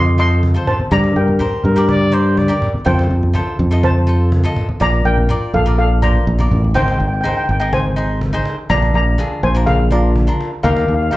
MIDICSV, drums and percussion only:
0, 0, Header, 1, 3, 480
1, 0, Start_track
1, 0, Key_signature, -2, "major"
1, 0, Tempo, 485830
1, 906, Time_signature, 4, 2, 24, 8
1, 11035, End_track
2, 0, Start_track
2, 0, Title_t, "Cajon"
2, 186, Note_on_c, 9, 38, 42
2, 285, Note_off_c, 9, 38, 0
2, 310, Note_on_c, 9, 38, 36
2, 409, Note_off_c, 9, 38, 0
2, 426, Note_on_c, 9, 36, 93
2, 525, Note_off_c, 9, 36, 0
2, 666, Note_on_c, 9, 38, 84
2, 765, Note_off_c, 9, 38, 0
2, 789, Note_on_c, 9, 38, 32
2, 888, Note_off_c, 9, 38, 0
2, 904, Note_on_c, 9, 36, 108
2, 1003, Note_off_c, 9, 36, 0
2, 1025, Note_on_c, 9, 38, 84
2, 1124, Note_off_c, 9, 38, 0
2, 1145, Note_on_c, 9, 38, 43
2, 1243, Note_off_c, 9, 38, 0
2, 1270, Note_on_c, 9, 38, 32
2, 1369, Note_off_c, 9, 38, 0
2, 1385, Note_on_c, 9, 36, 78
2, 1386, Note_on_c, 9, 38, 77
2, 1484, Note_off_c, 9, 36, 0
2, 1484, Note_off_c, 9, 38, 0
2, 1626, Note_on_c, 9, 38, 44
2, 1725, Note_off_c, 9, 38, 0
2, 1749, Note_on_c, 9, 38, 36
2, 1848, Note_off_c, 9, 38, 0
2, 1864, Note_on_c, 9, 36, 102
2, 1962, Note_off_c, 9, 36, 0
2, 2103, Note_on_c, 9, 38, 47
2, 2202, Note_off_c, 9, 38, 0
2, 2228, Note_on_c, 9, 38, 39
2, 2327, Note_off_c, 9, 38, 0
2, 2346, Note_on_c, 9, 36, 87
2, 2444, Note_off_c, 9, 36, 0
2, 2588, Note_on_c, 9, 38, 73
2, 2686, Note_off_c, 9, 38, 0
2, 2714, Note_on_c, 9, 38, 32
2, 2812, Note_off_c, 9, 38, 0
2, 2827, Note_on_c, 9, 36, 94
2, 2926, Note_off_c, 9, 36, 0
2, 2954, Note_on_c, 9, 38, 92
2, 3053, Note_off_c, 9, 38, 0
2, 3069, Note_on_c, 9, 38, 49
2, 3168, Note_off_c, 9, 38, 0
2, 3195, Note_on_c, 9, 38, 35
2, 3293, Note_off_c, 9, 38, 0
2, 3307, Note_on_c, 9, 36, 88
2, 3307, Note_on_c, 9, 38, 78
2, 3406, Note_off_c, 9, 36, 0
2, 3406, Note_off_c, 9, 38, 0
2, 3549, Note_on_c, 9, 38, 50
2, 3647, Note_off_c, 9, 38, 0
2, 3672, Note_on_c, 9, 38, 34
2, 3771, Note_off_c, 9, 38, 0
2, 3787, Note_on_c, 9, 36, 119
2, 3886, Note_off_c, 9, 36, 0
2, 4026, Note_on_c, 9, 38, 44
2, 4124, Note_off_c, 9, 38, 0
2, 4269, Note_on_c, 9, 36, 97
2, 4368, Note_off_c, 9, 36, 0
2, 4510, Note_on_c, 9, 38, 70
2, 4609, Note_off_c, 9, 38, 0
2, 4634, Note_on_c, 9, 38, 31
2, 4733, Note_off_c, 9, 38, 0
2, 4751, Note_on_c, 9, 38, 28
2, 4850, Note_off_c, 9, 38, 0
2, 4989, Note_on_c, 9, 38, 46
2, 5088, Note_off_c, 9, 38, 0
2, 5226, Note_on_c, 9, 38, 29
2, 5325, Note_off_c, 9, 38, 0
2, 5469, Note_on_c, 9, 38, 46
2, 5568, Note_off_c, 9, 38, 0
2, 6076, Note_on_c, 9, 38, 38
2, 6175, Note_off_c, 9, 38, 0
2, 6193, Note_on_c, 9, 38, 38
2, 6292, Note_off_c, 9, 38, 0
2, 6431, Note_on_c, 9, 38, 48
2, 6529, Note_off_c, 9, 38, 0
2, 6558, Note_on_c, 9, 38, 37
2, 6657, Note_off_c, 9, 38, 0
2, 6673, Note_on_c, 9, 36, 110
2, 6772, Note_off_c, 9, 36, 0
2, 6798, Note_on_c, 9, 38, 87
2, 6896, Note_off_c, 9, 38, 0
2, 6918, Note_on_c, 9, 38, 48
2, 7016, Note_off_c, 9, 38, 0
2, 7037, Note_on_c, 9, 38, 37
2, 7136, Note_off_c, 9, 38, 0
2, 7155, Note_on_c, 9, 36, 80
2, 7155, Note_on_c, 9, 38, 86
2, 7253, Note_off_c, 9, 36, 0
2, 7254, Note_off_c, 9, 38, 0
2, 7397, Note_on_c, 9, 38, 49
2, 7495, Note_off_c, 9, 38, 0
2, 7520, Note_on_c, 9, 38, 33
2, 7619, Note_off_c, 9, 38, 0
2, 7635, Note_on_c, 9, 36, 126
2, 7733, Note_off_c, 9, 36, 0
2, 8115, Note_on_c, 9, 36, 104
2, 8213, Note_off_c, 9, 36, 0
2, 8353, Note_on_c, 9, 38, 76
2, 8451, Note_off_c, 9, 38, 0
2, 8482, Note_on_c, 9, 38, 29
2, 8581, Note_off_c, 9, 38, 0
2, 8594, Note_on_c, 9, 36, 95
2, 8693, Note_off_c, 9, 36, 0
2, 8717, Note_on_c, 9, 38, 86
2, 8816, Note_off_c, 9, 38, 0
2, 8835, Note_on_c, 9, 38, 40
2, 8934, Note_off_c, 9, 38, 0
2, 8960, Note_on_c, 9, 38, 36
2, 9059, Note_off_c, 9, 38, 0
2, 9075, Note_on_c, 9, 36, 72
2, 9079, Note_on_c, 9, 38, 85
2, 9173, Note_off_c, 9, 36, 0
2, 9178, Note_off_c, 9, 38, 0
2, 9317, Note_on_c, 9, 38, 48
2, 9416, Note_off_c, 9, 38, 0
2, 9554, Note_on_c, 9, 36, 120
2, 9652, Note_off_c, 9, 36, 0
2, 9793, Note_on_c, 9, 38, 42
2, 9892, Note_off_c, 9, 38, 0
2, 10034, Note_on_c, 9, 36, 91
2, 10133, Note_off_c, 9, 36, 0
2, 10280, Note_on_c, 9, 38, 76
2, 10379, Note_off_c, 9, 38, 0
2, 10400, Note_on_c, 9, 38, 34
2, 10498, Note_off_c, 9, 38, 0
2, 10513, Note_on_c, 9, 36, 104
2, 10612, Note_off_c, 9, 36, 0
2, 10636, Note_on_c, 9, 38, 90
2, 10735, Note_off_c, 9, 38, 0
2, 10753, Note_on_c, 9, 38, 50
2, 10851, Note_off_c, 9, 38, 0
2, 10879, Note_on_c, 9, 38, 37
2, 10978, Note_off_c, 9, 38, 0
2, 10992, Note_on_c, 9, 36, 80
2, 10992, Note_on_c, 9, 38, 85
2, 11035, Note_off_c, 9, 36, 0
2, 11035, Note_off_c, 9, 38, 0
2, 11035, End_track
3, 0, Start_track
3, 0, Title_t, "Drums"
3, 665, Note_on_c, 9, 64, 80
3, 764, Note_off_c, 9, 64, 0
3, 786, Note_on_c, 9, 63, 87
3, 885, Note_off_c, 9, 63, 0
3, 1266, Note_on_c, 9, 63, 80
3, 1364, Note_off_c, 9, 63, 0
3, 1386, Note_on_c, 9, 64, 69
3, 1485, Note_off_c, 9, 64, 0
3, 1618, Note_on_c, 9, 63, 80
3, 1618, Note_on_c, 9, 64, 72
3, 1717, Note_off_c, 9, 63, 0
3, 1717, Note_off_c, 9, 64, 0
3, 2587, Note_on_c, 9, 64, 74
3, 2685, Note_off_c, 9, 64, 0
3, 2709, Note_on_c, 9, 63, 78
3, 2808, Note_off_c, 9, 63, 0
3, 3191, Note_on_c, 9, 63, 77
3, 3290, Note_off_c, 9, 63, 0
3, 3306, Note_on_c, 9, 64, 63
3, 3405, Note_off_c, 9, 64, 0
3, 3548, Note_on_c, 9, 63, 72
3, 3548, Note_on_c, 9, 64, 74
3, 3647, Note_off_c, 9, 63, 0
3, 3647, Note_off_c, 9, 64, 0
3, 4508, Note_on_c, 9, 64, 78
3, 4607, Note_off_c, 9, 64, 0
3, 4632, Note_on_c, 9, 63, 88
3, 4730, Note_off_c, 9, 63, 0
3, 5113, Note_on_c, 9, 63, 77
3, 5212, Note_off_c, 9, 63, 0
3, 5227, Note_on_c, 9, 64, 75
3, 5325, Note_off_c, 9, 64, 0
3, 5470, Note_on_c, 9, 63, 81
3, 5470, Note_on_c, 9, 64, 76
3, 5569, Note_off_c, 9, 63, 0
3, 5569, Note_off_c, 9, 64, 0
3, 5950, Note_on_c, 9, 64, 71
3, 6049, Note_off_c, 9, 64, 0
3, 6319, Note_on_c, 9, 63, 73
3, 6418, Note_off_c, 9, 63, 0
3, 6436, Note_on_c, 9, 64, 79
3, 6535, Note_off_c, 9, 64, 0
3, 6563, Note_on_c, 9, 63, 77
3, 6662, Note_off_c, 9, 63, 0
3, 11035, End_track
0, 0, End_of_file